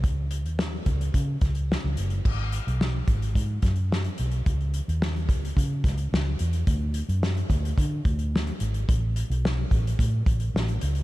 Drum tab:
CC |----------------|x---------------|----------------|----------------|
HH |x-xx--xxx-xx--xx|--xx--xxx-xx-xxx|xxxx-xxxx-xx--xx|x-xx-xxxx-xx-xxx|
SD |----o-----o-o---|----o-----o-o---|----o-----o-o---|----o-------o---|
BD |o-----o-o-o-----|o-----o-o-o-----|o-----o-o-o-----|o-----o-o-o-----|

CC |----------------|
HH |x-xx--xxx-xx-xxx|
SD |----o-------o---|
BD |o-----o-o-o-----|